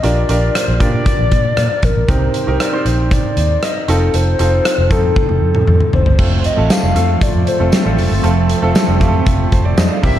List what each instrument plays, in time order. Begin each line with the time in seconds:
0.03 fingered electric bass A#1, grand piano A#2 D4 F4 G4 A#4, soft synth lead D5, closed hi-hat
0.29 fingered electric bass A#1, grand piano D4 F4 G4 A#4, closed hi-hat
0.55 soft synth lead C5, cross-stick, closed hi-hat
0.68 fingered electric bass A#1
0.80 fingered electric bass A#2, grand piano D4 F4 G4 A#4, soft synth lead D5, kick, closed hi-hat
1.06 kick, closed hi-hat
1.19 fingered electric bass A#1
1.32 fingered electric bass A#2, kick, closed hi-hat
1.57 fingered electric bass A#2, cross-stick, closed hi-hat
1.83 fingered electric bass A#1, soft synth lead A#4, kick, closed hi-hat
1.96 fingered electric bass A#1
2.08 fingered electric bass C2, grand piano C3 C4 D#4 G4 A#4, soft synth lead C5, kick, closed hi-hat
2.34 closed hi-hat
2.47 fingered electric bass C2, grand piano C4 D#4 G4 A#4
2.60 soft synth lead D5, cross-stick, closed hi-hat
2.72 grand piano C4 D#4 G4 C5
2.85 fingered electric bass A#1, soft synth lead C5, closed hi-hat
3.11 soft synth lead D5, kick, closed hi-hat
3.37 fingered electric bass D#2, closed hi-hat
3.63 soft synth lead D#5, cross-stick, closed hi-hat
3.88 fingered electric bass F1, grand piano C4 D#4 F4 A4, soft synth lead A4, closed hi-hat
4.14 fingered electric bass F1, soft synth lead C5, closed hi-hat
4.39 fingered electric bass F1, grand piano C4 D#4 F4 A4, closed hi-hat
4.65 cross-stick, closed hi-hat
4.78 fingered electric bass F1
4.90 fingered electric bass F2, grand piano C4 D#4 F4 A4, soft synth lead A4, kick, closed hi-hat
5.16 kick, high tom
5.29 fingered electric bass F1, high tom
5.42 fingered electric bass F2
5.55 mid tom
5.67 fingered electric bass F2, mid tom
5.80 mid tom
5.93 fingered electric bass F1, soft synth lead C5, floor tom
6.06 fingered electric bass G1, floor tom
6.18 fingered electric bass F1, string machine F3 C4 A4, grand piano A3 C4 F4 A4, kick, crash
6.44 soft synth lead D#5, closed hi-hat
6.57 fingered electric bass A1, grand piano A3 C4 F4 A4
6.70 soft synth lead F5, snare, closed hi-hat, tambourine
6.83 fingered electric bass F1
6.95 fingered electric bass F2, grand piano A3 C4 F4 A4, closed hi-hat
7.21 soft synth lead D5, kick, closed hi-hat
7.34 fingered electric bass F2
7.47 soft synth lead C5, closed hi-hat
7.59 fingered electric bass F1, grand piano A3 C4 F4 A4
7.72 soft synth lead C5, snare, closed hi-hat, tambourine
7.84 fingered electric bass A1, grand piano A3 C4 F4 A4
7.98 fingered electric bass F1, open hi-hat
8.11 fingered electric bass G1
8.23 fingered electric bass F1, grand piano A3 C4 F4 A4, closed hi-hat
8.50 closed hi-hat
8.62 fingered electric bass F1, grand piano A3 C4 F4 A4
8.75 snare, closed hi-hat, tambourine
8.88 fingered electric bass F1
9.00 fingered electric bass F2, grand piano A3 C4 F4 G4, kick, closed hi-hat
9.08 grand piano A4
9.26 fingered electric bass F1, kick, closed hi-hat
9.52 fingered electric bass F1, grand piano A4 C5, kick, closed hi-hat
9.65 grand piano D5
9.77 fingered electric bass F2, grand piano C5 D#5, snare, closed hi-hat, tambourine
9.91 grand piano D5 F5
10.03 fingered electric bass C2, string machine C3 A#3 E4, grand piano C3 A#3 C4 E4 G4, soft synth lead E5, kick, open hi-hat
10.16 fingered electric bass A#1